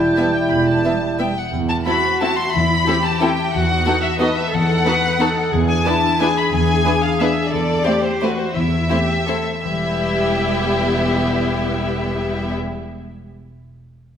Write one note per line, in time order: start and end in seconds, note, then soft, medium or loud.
0.00 1.46 E3 soft
0.00 1.37 G3 soft
0.00 1.48 B3 soft
0.00 1.37 E4 soft
0.00 1.37 E4 medium
0.00 1.68 E4 soft
0.00 1.52 G4 soft
0.00 1.33 E5 medium
0.00 1.37 G5 soft
0.00 0.34 A5 soft
0.17 0.30 E3 soft
0.17 0.30 G3 soft
0.17 0.26 B3 soft
0.17 0.25 E5 soft
0.35 0.51 G5 soft
0.50 0.79 E1 soft
0.50 0.79 E2 soft
0.50 0.68 B5 soft
0.68 1.19 A5 soft
0.85 0.98 E3 soft
0.85 0.99 G3 soft
0.85 0.93 B3 soft
0.85 0.93 E5 soft
1.19 1.33 E3 soft
1.19 1.33 G3 soft
1.19 1.28 B3 soft
1.19 1.27 E5 soft
1.19 1.37 G5 soft
1.37 1.53 F#5 soft
1.53 1.81 E2 medium
1.53 2.54 E3 soft
1.69 2.70 E4 soft
1.69 1.76 A5 medium
1.86 1.95 C4 soft
1.86 1.94 E4 soft
1.86 1.95 E4 soft
1.86 2.50 F#4 medium
1.86 1.94 A4 soft
1.86 2.87 A4 soft
1.86 2.21 B5 medium
2.05 3.04 C5 soft
2.21 2.29 C4 soft
2.21 2.29 E4 soft
2.21 2.30 E4 soft
2.21 2.29 A4 soft
2.21 2.38 A5 medium
2.21 3.21 A5 soft
2.38 3.37 E5 soft
2.38 2.54 C6 medium
2.54 2.82 E2 medium
2.54 3.53 E3 soft
2.54 2.87 E4 soft
2.54 3.04 B5 medium
2.71 3.55 E4 soft
2.86 2.95 C4 soft
2.86 2.94 E4 soft
2.86 2.95 E4 soft
2.86 3.54 G4 medium
2.86 2.95 A4 soft
2.86 3.85 A4 soft
3.05 3.55 C5 soft
3.05 3.22 A5 medium
3.21 3.30 C4 soft
3.21 3.29 E4 soft
3.21 3.29 A4 soft
3.21 3.54 G5 medium
3.21 4.19 A5 soft
3.38 3.55 E5 soft
3.54 3.81 E2 medium
3.54 4.52 E3 soft
3.54 4.21 F#4 soft
3.54 4.04 F#5 medium
3.70 4.67 D#4 soft
3.86 3.95 B3 soft
3.86 3.95 D#4 soft
3.86 3.94 F#4 soft
3.86 3.95 A4 soft
3.86 4.85 A4 soft
4.03 5.02 B4 soft
4.03 4.21 E5 medium
4.20 4.28 B3 soft
4.20 4.28 D#4 soft
4.20 4.29 F#4 soft
4.20 4.29 A4 soft
4.20 4.53 B4 medium
4.20 4.37 D#5 medium
4.20 5.19 A5 soft
4.37 5.35 D#5 soft
4.37 4.53 E5 medium
4.53 4.80 E2 medium
4.53 5.51 E3 soft
4.53 4.85 A4 medium
4.53 5.52 F#5 medium
4.69 5.53 D#4 soft
4.86 4.94 B3 soft
4.86 4.94 D#4 soft
4.86 4.94 F#4 soft
4.86 4.94 A4 soft
4.86 5.20 B4 medium
5.03 5.84 B4 soft
5.20 5.28 B3 soft
5.20 5.28 D#4 soft
5.20 5.28 F#4 soft
5.20 5.52 A4 medium
5.20 5.29 A4 soft
5.20 5.54 A5 soft
5.36 5.53 D#5 soft
5.52 5.80 E2 medium
5.52 6.52 E3 soft
5.52 5.86 G#4 medium
5.68 6.02 D4 soft
5.68 5.84 G#5 medium
5.85 5.94 B3 soft
5.85 5.94 D4 soft
5.85 5.93 E4 soft
5.85 6.20 E4 medium
5.85 5.94 B4 soft
5.85 6.84 B4 soft
5.85 6.20 A5 medium
6.03 6.67 D4 soft
6.20 6.29 B3 soft
6.20 6.29 D4 soft
6.20 6.28 E4 soft
6.20 7.52 G#4 medium
6.20 6.28 B4 soft
6.20 6.37 G#5 medium
6.20 7.19 B5 soft
6.37 7.35 D5 soft
6.37 6.53 B5 medium
6.52 6.79 E2 medium
6.52 7.51 E3 soft
6.52 7.02 G#5 medium
6.69 7.01 D4 soft
6.85 6.93 B3 soft
6.85 6.93 D4 soft
6.85 6.93 E4 soft
6.85 7.53 B4 soft
6.85 6.93 B4 soft
7.02 7.53 D4 soft
7.02 7.19 F5 medium
7.19 7.28 B3 soft
7.19 7.28 D4 soft
7.19 7.28 E4 soft
7.19 7.28 B4 soft
7.19 7.52 E5 medium
7.19 7.53 B5 soft
7.36 7.53 D5 soft
7.51 7.79 E2 medium
7.51 8.54 E3 soft
7.51 7.85 A4 medium
7.51 8.03 D5 medium
7.69 8.71 C4 soft
7.84 7.95 A3 soft
7.84 7.95 C4 soft
7.84 7.93 E4 soft
7.84 8.22 G4 soft
7.84 7.92 C5 soft
7.84 8.38 C5 soft
8.03 9.08 A4 soft
8.03 8.21 C5 medium
8.21 8.30 A3 soft
8.21 8.31 C4 soft
8.21 8.29 E4 soft
8.21 8.56 F#4 soft
8.21 8.39 B4 medium
8.21 8.29 C5 soft
8.21 9.27 C6 soft
8.39 8.55 C5 soft
8.39 8.89 C5 soft
8.55 8.84 E2 medium
8.55 9.63 E3 soft
8.55 8.90 E4 soft
8.55 9.63 E5 medium
8.72 9.66 C4 soft
8.90 8.99 A3 soft
8.90 8.99 C4 soft
8.90 8.98 E4 soft
8.90 9.28 G4 soft
8.90 8.98 C5 soft
8.90 9.46 C5 soft
9.09 9.66 A4 soft
9.27 9.36 A3 soft
9.27 9.36 C4 soft
9.27 9.36 E4 soft
9.27 9.47 A4 soft
9.27 9.36 C5 soft
9.27 9.66 C6 soft
9.47 9.66 C5 soft
9.64 12.53 E1 soft
9.64 12.53 E2 soft
9.64 13.54 E3 soft
9.64 12.54 G3 soft
9.64 12.54 B3 soft
9.64 12.53 E4 soft
9.64 12.53 G4 soft
9.64 12.53 E5 medium
9.71 13.28 G3 soft
9.78 13.30 E4 soft
9.85 13.34 B4 soft
9.92 13.37 E5 soft